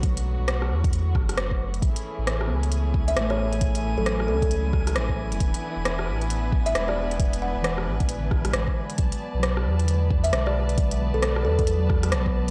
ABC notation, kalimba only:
X:1
M:4/4
L:1/16
Q:"Swing 16ths" 1/4=134
K:Bdor
V:1 name="Kalimba"
z16 | z8 z3 e2 c3- | c z2 A2 z A A z8 | z8 z3 e2 d3- |
d z f6 z8 | z8 z3 e2 d3- | d z2 A2 z A A z8 |]